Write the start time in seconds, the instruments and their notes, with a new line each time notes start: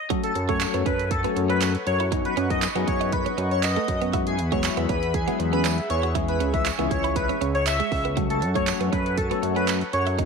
0.10 clean electric guitar F#3, tine electric piano F#3 A3 C#4 F#4 A4, analog synth pad A4 C#5 F#5 C#6, kick, closed hi-hat
0.23 digital synth lead A4, closed hi-hat
0.35 analog synth bass F#2, muted clean electric guitar stroke, closed hi-hat
0.49 tine electric piano F#3 A3 C#4 F#4 A4, clean electric guitar A3, digital synth lead C#5, kick, closed hi-hat
0.60 muted clean electric guitar stroke, clap, closed hi-hat, tambourine
0.74 analog synth bass F#2, clean electric guitar B3, closed hi-hat
0.86 analog synth bass F#2, clean electric guitar C#4, digital synth lead B4, kick, closed hi-hat
0.99 closed hi-hat
1.11 digital synth lead A4, kick, closed hi-hat
1.24 tine electric piano F#3 A3 C#4 F#4 A4, clean electric guitar B3, closed hi-hat
1.36 analog synth bass F#2, muted clean electric guitar stroke, closed hi-hat
1.50 clean electric guitar C#4, digital synth lead B4, closed hi-hat
1.61 clean electric guitar C#4, clap, closed hi-hat, tambourine
1.75 closed hi-hat
1.87 analog synth bass F#2, digital synth lead C#5, muted clean electric guitar stroke, closed hi-hat
2.00 clean electric guitar E4, closed hi-hat
2.12 tine electric piano F#3 B3 C#4 D#4 F#4, clean electric guitar D#4, analog synth pad B4 D#5, kick, closed hi-hat
2.25 digital synth lead B4, closed hi-hat
2.37 analog synth bass F#2, clean electric guitar C#4, closed hi-hat
2.50 tine electric piano F#3 B3 C#4 D#4 F#4, digital synth lead D#5, muted clean electric guitar stroke, kick, closed hi-hat
2.62 clap, closed hi-hat, tambourine
2.76 analog synth bass F#2, tine electric piano F#3 B3 C#4 D#4 G#4, clean electric guitar B3, closed hi-hat
2.87 analog synth bass F#2, digital synth lead C#5, muted clean electric guitar stroke, kick, closed hi-hat
3.01 clean electric guitar D#4, closed hi-hat
3.13 digital synth lead B4, muted clean electric guitar stroke, kick, closed hi-hat
3.26 clean electric guitar C#4, closed hi-hat
3.38 analog synth bass F#2, clean electric guitar C#4, closed hi-hat
3.51 digital synth lead C#5, closed hi-hat
3.63 digital synth lead D#5, clap, closed hi-hat, tambourine
3.76 clean electric guitar A3, closed hi-hat
3.88 analog synth bass F#2, muted clean electric guitar stroke, kick, closed hi-hat
4.01 clean electric guitar B3, closed hi-hat
4.13 tine electric piano F#3 G#3 B3 E4 F#4, clean electric guitar E4, analog synth pad G#4 E5 B5, kick, closed hi-hat
4.27 digital synth lead G#4, closed hi-hat
4.39 analog synth bass E2, muted clean electric guitar stroke, closed hi-hat
4.52 tine electric piano F#3 G#3 B3 E4 F#4, clean electric guitar G#3, digital synth lead C#5, kick, closed hi-hat
4.64 muted clean electric guitar stroke, clap, closed hi-hat, tambourine
4.77 analog synth bass E2, clean electric guitar B3, closed hi-hat
4.89 analog synth bass E2, clean electric guitar C#4, digital synth lead B4, kick, closed hi-hat
5.03 closed hi-hat
5.14 digital synth lead G#4, kick, closed hi-hat
5.28 tine electric piano F#3 G#3 B3 E4 G#4, clean electric guitar B3, closed hi-hat
5.40 analog synth bass E2, muted clean electric guitar stroke, closed hi-hat
5.53 clean electric guitar C#4, digital synth lead B4, closed hi-hat
5.65 clean electric guitar C#4, clap, closed hi-hat, tambourine
5.78 closed hi-hat
5.90 analog synth bass E2, digital synth lead C#5, muted clean electric guitar stroke, closed hi-hat
6.03 clean electric guitar F#4, closed hi-hat
6.15 tine electric piano E3 G#3 C#4 E4 G#4, clean electric guitar E4, analog synth pad C#5 C#6, kick, closed hi-hat
6.28 digital synth lead B4, closed hi-hat
6.40 analog synth bass C#2, clean electric guitar C#4, closed hi-hat
6.54 tine electric piano E3 G#3 C#4 E4 B4, digital synth lead E5, muted clean electric guitar stroke, kick, closed hi-hat
6.65 clap, closed hi-hat, tambourine
6.79 analog synth bass C#2, tine electric piano E3 G#3 C#4 E4 G#4, clean electric guitar B3, closed hi-hat
6.91 analog synth bass C#2, digital synth lead C#5, muted clean electric guitar stroke, kick, closed hi-hat
7.04 clean electric guitar E4, closed hi-hat
7.16 digital synth lead B4, muted clean electric guitar stroke, kick, closed hi-hat
7.29 clean electric guitar C#4, closed hi-hat
7.41 analog synth bass C#2, clean electric guitar C#4, closed hi-hat
7.55 digital synth lead C#5, closed hi-hat
7.66 digital synth lead E5, clap, closed hi-hat, tambourine
7.80 clean electric guitar G#3, closed hi-hat
7.92 analog synth bass C#2, muted clean electric guitar stroke, kick, open hi-hat
8.05 clean electric guitar B3, closed hi-hat
8.16 tine electric piano F#3 A3 C#4 F#4 A4, clean electric guitar F#3, analog synth pad A4 C#5 F#5, kick, closed hi-hat
8.30 digital synth lead A4, closed hi-hat
8.42 analog synth bass F#2, muted clean electric guitar stroke, closed hi-hat
8.55 tine electric piano F#3 A3 C#4 F#4 A4, clean electric guitar A3, digital synth lead C#5, kick, closed hi-hat
8.67 muted clean electric guitar stroke, clap, closed hi-hat, tambourine
8.81 analog synth bass F#2, clean electric guitar B3, closed hi-hat
8.93 analog synth bass F#2, clean electric guitar C#4, digital synth lead B4, kick, closed hi-hat
9.06 closed hi-hat
9.18 digital synth lead A4, kick, closed hi-hat
9.31 tine electric piano F#3 A3 C#4 F#4 A4, clean electric guitar B3, closed hi-hat
9.43 analog synth bass F#2, muted clean electric guitar stroke, closed hi-hat
9.56 clean electric guitar C#4, digital synth lead B4, closed hi-hat
9.68 clean electric guitar C#4, clap, closed hi-hat, tambourine
9.81 closed hi-hat
9.93 analog synth bass F#2, digital synth lead C#5, muted clean electric guitar stroke, closed hi-hat
10.07 clean electric guitar E4, closed hi-hat
10.18 tine electric piano F#3 B3 C#4 D#4 F#4, clean electric guitar D#4, analog synth pad B4 D#5 C#6, kick, closed hi-hat